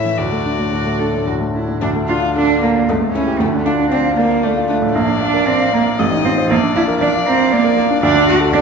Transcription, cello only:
0, 0, Header, 1, 2, 480
1, 0, Start_track
1, 0, Key_signature, -1, "minor"
1, 0, Tempo, 540054
1, 162, Time_signature, 3, 2, 24, 8
1, 2558, Tempo, 518583
1, 5438, Tempo, 508906
1, 7913, End_track
2, 0, Start_track
2, 0, Title_t, "Cello"
2, 0, Program_c, 0, 42
2, 0, Note_on_c, 0, 64, 43
2, 152, Note_off_c, 0, 64, 0
2, 158, Note_on_c, 0, 66, 40
2, 589, Note_off_c, 0, 66, 0
2, 636, Note_on_c, 0, 66, 42
2, 884, Note_on_c, 0, 69, 40
2, 897, Note_off_c, 0, 66, 0
2, 1120, Note_off_c, 0, 69, 0
2, 1125, Note_on_c, 0, 66, 37
2, 1196, Note_off_c, 0, 66, 0
2, 1374, Note_on_c, 0, 64, 36
2, 1610, Note_off_c, 0, 64, 0
2, 1617, Note_on_c, 0, 62, 61
2, 1688, Note_off_c, 0, 62, 0
2, 1854, Note_on_c, 0, 65, 58
2, 1925, Note_off_c, 0, 65, 0
2, 2097, Note_on_c, 0, 62, 64
2, 2323, Note_off_c, 0, 62, 0
2, 2328, Note_on_c, 0, 58, 54
2, 2560, Note_on_c, 0, 57, 48
2, 2574, Note_off_c, 0, 58, 0
2, 2787, Note_off_c, 0, 57, 0
2, 2793, Note_on_c, 0, 61, 64
2, 3036, Note_on_c, 0, 57, 62
2, 3050, Note_off_c, 0, 61, 0
2, 3278, Note_on_c, 0, 62, 64
2, 3292, Note_off_c, 0, 57, 0
2, 3512, Note_off_c, 0, 62, 0
2, 3517, Note_on_c, 0, 60, 69
2, 3750, Note_off_c, 0, 60, 0
2, 3755, Note_on_c, 0, 58, 61
2, 3993, Note_off_c, 0, 58, 0
2, 4005, Note_on_c, 0, 57, 63
2, 4079, Note_off_c, 0, 57, 0
2, 4232, Note_on_c, 0, 57, 65
2, 4470, Note_on_c, 0, 58, 70
2, 4484, Note_off_c, 0, 57, 0
2, 4713, Note_off_c, 0, 58, 0
2, 4718, Note_on_c, 0, 62, 74
2, 4958, Note_on_c, 0, 60, 75
2, 4972, Note_off_c, 0, 62, 0
2, 5196, Note_off_c, 0, 60, 0
2, 5202, Note_on_c, 0, 58, 73
2, 5276, Note_off_c, 0, 58, 0
2, 5437, Note_on_c, 0, 57, 69
2, 5512, Note_off_c, 0, 57, 0
2, 5680, Note_on_c, 0, 60, 72
2, 5755, Note_off_c, 0, 60, 0
2, 5919, Note_on_c, 0, 58, 82
2, 5994, Note_off_c, 0, 58, 0
2, 6165, Note_on_c, 0, 64, 85
2, 6240, Note_off_c, 0, 64, 0
2, 6399, Note_on_c, 0, 62, 68
2, 6475, Note_off_c, 0, 62, 0
2, 6635, Note_on_c, 0, 60, 82
2, 6885, Note_on_c, 0, 58, 82
2, 6899, Note_off_c, 0, 60, 0
2, 7110, Note_off_c, 0, 58, 0
2, 7116, Note_on_c, 0, 58, 76
2, 7191, Note_off_c, 0, 58, 0
2, 7354, Note_on_c, 0, 62, 84
2, 7589, Note_off_c, 0, 62, 0
2, 7594, Note_on_c, 0, 66, 87
2, 7670, Note_off_c, 0, 66, 0
2, 7835, Note_on_c, 0, 62, 85
2, 7910, Note_off_c, 0, 62, 0
2, 7913, End_track
0, 0, End_of_file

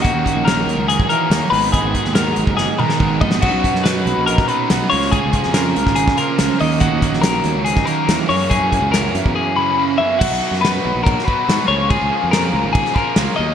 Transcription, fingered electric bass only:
0, 0, Header, 1, 2, 480
1, 0, Start_track
1, 0, Tempo, 423430
1, 46, Time_signature, 4, 2, 24, 8
1, 15352, End_track
2, 0, Start_track
2, 0, Title_t, "Fingered electric bass"
2, 0, Program_c, 0, 33
2, 159, Note_on_c, 0, 39, 93
2, 266, Note_off_c, 0, 39, 0
2, 400, Note_on_c, 0, 34, 92
2, 713, Note_off_c, 0, 34, 0
2, 753, Note_on_c, 0, 39, 94
2, 862, Note_off_c, 0, 39, 0
2, 877, Note_on_c, 0, 37, 99
2, 1088, Note_off_c, 0, 37, 0
2, 1474, Note_on_c, 0, 39, 81
2, 1584, Note_off_c, 0, 39, 0
2, 1723, Note_on_c, 0, 32, 104
2, 2035, Note_off_c, 0, 32, 0
2, 2078, Note_on_c, 0, 32, 94
2, 2186, Note_off_c, 0, 32, 0
2, 2326, Note_on_c, 0, 39, 81
2, 2637, Note_off_c, 0, 39, 0
2, 2692, Note_on_c, 0, 32, 90
2, 2794, Note_off_c, 0, 32, 0
2, 2801, Note_on_c, 0, 30, 95
2, 3011, Note_off_c, 0, 30, 0
2, 3411, Note_on_c, 0, 32, 90
2, 3626, Note_off_c, 0, 32, 0
2, 3646, Note_on_c, 0, 34, 78
2, 3863, Note_off_c, 0, 34, 0
2, 3887, Note_on_c, 0, 35, 94
2, 3990, Note_off_c, 0, 35, 0
2, 4000, Note_on_c, 0, 35, 79
2, 4107, Note_off_c, 0, 35, 0
2, 4243, Note_on_c, 0, 42, 75
2, 4554, Note_off_c, 0, 42, 0
2, 4599, Note_on_c, 0, 35, 98
2, 4706, Note_off_c, 0, 35, 0
2, 4734, Note_on_c, 0, 34, 99
2, 4938, Note_off_c, 0, 34, 0
2, 5340, Note_on_c, 0, 35, 93
2, 5438, Note_off_c, 0, 35, 0
2, 5586, Note_on_c, 0, 37, 93
2, 5887, Note_off_c, 0, 37, 0
2, 5958, Note_on_c, 0, 37, 89
2, 6048, Note_off_c, 0, 37, 0
2, 6186, Note_on_c, 0, 41, 81
2, 6487, Note_off_c, 0, 41, 0
2, 6542, Note_on_c, 0, 37, 94
2, 6638, Note_off_c, 0, 37, 0
2, 6653, Note_on_c, 0, 32, 91
2, 6856, Note_off_c, 0, 32, 0
2, 7255, Note_on_c, 0, 37, 85
2, 7354, Note_off_c, 0, 37, 0
2, 7497, Note_on_c, 0, 39, 96
2, 7801, Note_off_c, 0, 39, 0
2, 7850, Note_on_c, 0, 39, 86
2, 7951, Note_off_c, 0, 39, 0
2, 8076, Note_on_c, 0, 34, 84
2, 8389, Note_off_c, 0, 34, 0
2, 8440, Note_on_c, 0, 39, 98
2, 8545, Note_off_c, 0, 39, 0
2, 8551, Note_on_c, 0, 37, 92
2, 8763, Note_off_c, 0, 37, 0
2, 9165, Note_on_c, 0, 39, 91
2, 9268, Note_off_c, 0, 39, 0
2, 9404, Note_on_c, 0, 42, 90
2, 9714, Note_off_c, 0, 42, 0
2, 9763, Note_on_c, 0, 42, 90
2, 9867, Note_off_c, 0, 42, 0
2, 9986, Note_on_c, 0, 37, 79
2, 10304, Note_off_c, 0, 37, 0
2, 10371, Note_on_c, 0, 42, 93
2, 10471, Note_off_c, 0, 42, 0
2, 10491, Note_on_c, 0, 40, 91
2, 10591, Note_off_c, 0, 40, 0
2, 11581, Note_on_c, 0, 35, 94
2, 11673, Note_off_c, 0, 35, 0
2, 11680, Note_on_c, 0, 35, 94
2, 11785, Note_off_c, 0, 35, 0
2, 11917, Note_on_c, 0, 42, 84
2, 12230, Note_off_c, 0, 42, 0
2, 12304, Note_on_c, 0, 35, 93
2, 12399, Note_off_c, 0, 35, 0
2, 12417, Note_on_c, 0, 34, 100
2, 12618, Note_off_c, 0, 34, 0
2, 13021, Note_on_c, 0, 44, 98
2, 13117, Note_off_c, 0, 44, 0
2, 13244, Note_on_c, 0, 37, 97
2, 13553, Note_off_c, 0, 37, 0
2, 13617, Note_on_c, 0, 37, 87
2, 13715, Note_off_c, 0, 37, 0
2, 13870, Note_on_c, 0, 41, 80
2, 14169, Note_off_c, 0, 41, 0
2, 14211, Note_on_c, 0, 37, 106
2, 14311, Note_off_c, 0, 37, 0
2, 14330, Note_on_c, 0, 32, 96
2, 14534, Note_off_c, 0, 32, 0
2, 14929, Note_on_c, 0, 37, 87
2, 15030, Note_off_c, 0, 37, 0
2, 15180, Note_on_c, 0, 39, 109
2, 15352, Note_off_c, 0, 39, 0
2, 15352, End_track
0, 0, End_of_file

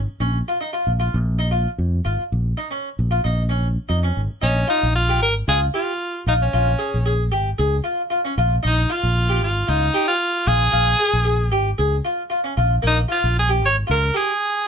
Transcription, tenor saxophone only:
0, 0, Header, 1, 2, 480
1, 0, Start_track
1, 0, Tempo, 525855
1, 183, Time_signature, 4, 2, 24, 8
1, 13395, End_track
2, 0, Start_track
2, 0, Title_t, "Tenor saxophone"
2, 0, Program_c, 0, 66
2, 4039, Note_on_c, 0, 61, 98
2, 4259, Note_off_c, 0, 61, 0
2, 4285, Note_on_c, 0, 63, 99
2, 4502, Note_off_c, 0, 63, 0
2, 4519, Note_on_c, 0, 65, 109
2, 4739, Note_off_c, 0, 65, 0
2, 4765, Note_on_c, 0, 70, 110
2, 4870, Note_off_c, 0, 70, 0
2, 5006, Note_on_c, 0, 68, 101
2, 5110, Note_off_c, 0, 68, 0
2, 5248, Note_on_c, 0, 65, 93
2, 5686, Note_off_c, 0, 65, 0
2, 5732, Note_on_c, 0, 63, 94
2, 5783, Note_off_c, 0, 63, 0
2, 5859, Note_on_c, 0, 61, 77
2, 6530, Note_off_c, 0, 61, 0
2, 7911, Note_on_c, 0, 63, 100
2, 8138, Note_on_c, 0, 65, 107
2, 8152, Note_off_c, 0, 63, 0
2, 8603, Note_off_c, 0, 65, 0
2, 8614, Note_on_c, 0, 65, 92
2, 8843, Note_on_c, 0, 63, 104
2, 8857, Note_off_c, 0, 65, 0
2, 9190, Note_off_c, 0, 63, 0
2, 9196, Note_on_c, 0, 65, 105
2, 9560, Note_on_c, 0, 68, 114
2, 9573, Note_off_c, 0, 65, 0
2, 10513, Note_off_c, 0, 68, 0
2, 11747, Note_on_c, 0, 63, 109
2, 11846, Note_off_c, 0, 63, 0
2, 11973, Note_on_c, 0, 65, 105
2, 12184, Note_off_c, 0, 65, 0
2, 12220, Note_on_c, 0, 68, 100
2, 12320, Note_off_c, 0, 68, 0
2, 12465, Note_on_c, 0, 73, 107
2, 12564, Note_off_c, 0, 73, 0
2, 12696, Note_on_c, 0, 70, 109
2, 12933, Note_on_c, 0, 68, 97
2, 12947, Note_off_c, 0, 70, 0
2, 13395, Note_off_c, 0, 68, 0
2, 13395, End_track
0, 0, End_of_file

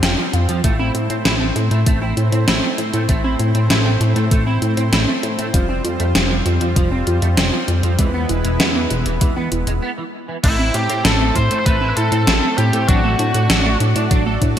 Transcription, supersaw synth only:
0, 0, Header, 1, 2, 480
1, 0, Start_track
1, 0, Key_signature, 0, "minor"
1, 0, Tempo, 612245
1, 503, Time_signature, 4, 2, 24, 8
1, 11439, End_track
2, 0, Start_track
2, 0, Title_t, "Supersaw synth"
2, 0, Program_c, 0, 81
2, 0, Note_on_c, 0, 55, 78
2, 0, Note_on_c, 0, 60, 72
2, 0, Note_on_c, 0, 65, 74
2, 0, Note_on_c, 0, 72, 87
2, 471, Note_off_c, 0, 72, 0
2, 472, Note_off_c, 0, 55, 0
2, 472, Note_off_c, 0, 65, 0
2, 503, Note_on_c, 0, 64, 72
2, 504, Note_on_c, 0, 57, 80
2, 504, Note_on_c, 0, 72, 87
2, 4312, Note_off_c, 0, 57, 0
2, 4312, Note_off_c, 0, 64, 0
2, 4343, Note_on_c, 0, 55, 79
2, 4344, Note_on_c, 0, 65, 73
2, 6232, Note_off_c, 0, 60, 0
2, 6232, Note_off_c, 0, 72, 0
2, 6244, Note_off_c, 0, 55, 0
2, 6244, Note_off_c, 0, 65, 0
2, 6263, Note_on_c, 0, 56, 79
2, 6263, Note_on_c, 0, 59, 75
2, 6263, Note_on_c, 0, 64, 75
2, 6263, Note_on_c, 0, 71, 91
2, 7688, Note_off_c, 0, 56, 0
2, 7689, Note_off_c, 0, 59, 0
2, 7689, Note_off_c, 0, 64, 0
2, 7689, Note_off_c, 0, 71, 0
2, 8183, Note_on_c, 0, 60, 74
2, 8183, Note_on_c, 0, 64, 73
2, 8183, Note_on_c, 0, 72, 89
2, 8184, Note_on_c, 0, 57, 80
2, 10084, Note_off_c, 0, 60, 0
2, 10084, Note_off_c, 0, 64, 0
2, 10084, Note_off_c, 0, 72, 0
2, 10102, Note_on_c, 0, 62, 72
2, 10102, Note_on_c, 0, 66, 74
2, 10102, Note_on_c, 0, 74, 87
2, 11439, Note_off_c, 0, 57, 0
2, 11439, Note_off_c, 0, 62, 0
2, 11439, Note_off_c, 0, 66, 0
2, 11439, Note_off_c, 0, 74, 0
2, 11439, End_track
0, 0, End_of_file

